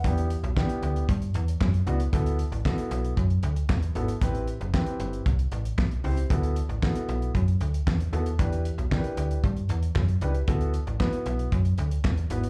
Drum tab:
HH |xxxx-xxxxxxx-xxx|xxxx-xxxxxxx-xxx|xxxx-xxxxxxx-xox|xxxx-xxxxxxx-xxx|
CP |----x-------x---|----x-------x---|----x-------x---|----x-------x---|
SD |----o-------o---|----o-------o---|----o-------o---|----o-------o---|
BD |o---o---o---o---|o---o---o---o---|o---o---o---o---|o---o---o---o---|

HH |xxxx-xxxxxxx-xxx|xxxx-xxxxxxx-xxx|
CP |----x-------x---|----x-------x---|
SD |----o-------o---|----o-------o---|
BD |o---o---o---o---|o---o---o---o---|